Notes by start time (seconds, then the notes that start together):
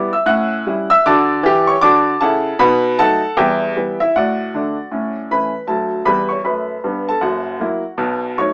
Already playing: E4 D6
0.13 E5 E6
0.26 A2 C#4 F#5 F#6
0.67 G3 C#4 E4
0.90 E5 E6
1.06 D3 F#4 D5 A5 D6
1.43 E3 G4
1.67 C#5 C#6
1.81 D3 F#4 D5 A5 D6
2.21 C#3 E4 A4 F#5 A5
2.59 B2 D#4 B4 F#5 B5
2.98 F#3 A3 D#4 A4 F#5 A5
3.37 E2 G3 G4 E5 G5
3.77 E3 G3 B3
4.00 E4 E5
4.16 A2 F#4 D5 F#5
4.54 D3 A3 D4
4.92 A2 C#4
5.31 E3 A3 C#4 B4 B5
5.67 D2 F#3 A4 A5
6.05 E2 G3 B4 B5
6.29 C#5 C#6
6.44 F#2 A3 B4 B5
6.84 G2 B3
7.08 A4 A5
7.21 F#1 F#2 F#4 F#5
7.60 F#3 A#3 E4
7.97 B1 B2
8.38 F#3 A3 D#4 C#5 C#6